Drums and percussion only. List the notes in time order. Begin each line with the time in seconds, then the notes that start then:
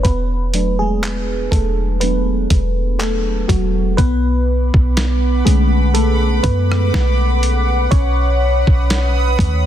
0.05 kick, closed hi-hat
0.54 closed hi-hat
1.03 clap, closed hi-hat
1.52 kick, closed hi-hat
2.01 closed hi-hat
2.50 kick, closed hi-hat
3.00 clap, closed hi-hat
3.49 kick, closed hi-hat
3.98 kick, closed hi-hat
4.74 kick
4.97 snare, closed hi-hat
5.47 closed hi-hat
5.95 closed hi-hat
6.44 kick, closed hi-hat
6.72 cross-stick
6.94 snare
7.43 closed hi-hat
7.92 kick, closed hi-hat
8.67 kick
8.90 snare, closed hi-hat
9.39 kick, closed hi-hat